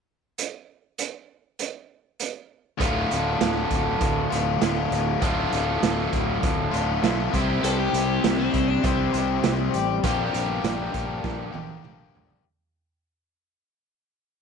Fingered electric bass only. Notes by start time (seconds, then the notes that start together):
2.80 D1
3.11 D1
3.41 D1
3.71 D1
4.01 D1
4.33 D1
4.62 D1
4.91 D1
5.22 D1
5.53 D1
5.82 D1
6.13 D1
6.43 D1
6.73 D1
7.03 B1
7.33 C2
7.63 C2
7.93 C2
8.24 C2
8.54 C2
8.84 C2
9.14 C2
9.45 C2
9.74 A1
10.04 A#1
10.34 A#1
10.64 A#1
10.94 A#1
11.24 A#1
11.54 A#1
11.84 A#1
12.14 A#1